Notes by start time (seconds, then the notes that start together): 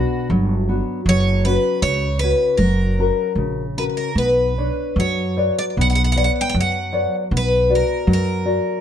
Already playing: B2 B3 D4 F#4
0.30 G1 F#3
0.68 B3 D4 F#4
1.06 F#1 F#3 C#5
1.45 C#4 F#4 B4 C#5
1.82 C#2 C#3 C#5
2.19 C#4 F#4 B4
2.24 C#5
2.57 F#1 F#3 A#4
2.99 C#4 F#4 A#4
3.35 A#1 C#3
3.77 C#4 F#4 A#4 B4
3.97 A#4
4.15 B1 B3 B4
4.58 D4 B4 C#5
4.96 F#2 F#3 C#5
5.37 B4 C#5 D5
5.59 D5
5.77 B1 B3
5.81 F#5
5.90 F#5
5.95 F#5
6.04 F#5
6.12 F#5
6.16 B4 C#5 D5 F#5
6.24 F#5
6.41 G5
6.49 G5
6.54 F#2 F#3
6.61 F#5
6.92 B4 C#5 D5
7.31 B1 B3
7.37 B4
7.70 F#4 D5
7.75 A#4
8.07 F#2 F#3
8.13 A#4
8.45 F#4 D5